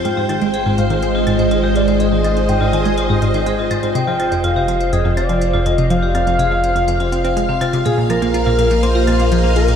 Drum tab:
HH |x-xxx-xxx-xxx-xx|x-xxx-xxx-xxx-xx|x-xxx-xxx-xxx-xx|x-xxx-xxxxxxx-xx|
CL |--x-------x-----|--x-----------x-|--x-------x-----|--x-----------x-|

HH |x-xxx-xxx-xxx-xx|
CL |--x-------x-----|